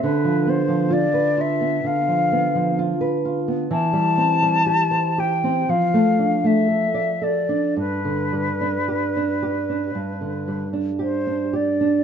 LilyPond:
<<
  \new Staff \with { instrumentName = "Flute" } { \time 4/4 \key g \mixolydian \tempo 4 = 59 b'8 c''8 d''8 e''8 f''4 r4 | a''4. g''8 f''8. e''8. d''8 | b'2~ b'8. r16 c''8 d''8 | }
  \new Staff \with { instrumentName = "Nylon-string guitar" } { \time 4/4 \key g \mixolydian d16 f16 b16 f16 f'16 b'16 f'16 b16 d16 f16 b16 f16 f'16 b'16 f'16 b16 | e16 g16 c'16 g16 g'16 c''16 g'16 c'16 f16 a16 d'16 a16 a'16 d''16 a'16 d'16 | g,16 d16 g16 d'16 g'16 d'16 g'16 d'16 g,16 d16 g16 d'16 g'16 d'16 g'16 d'16 | }
>>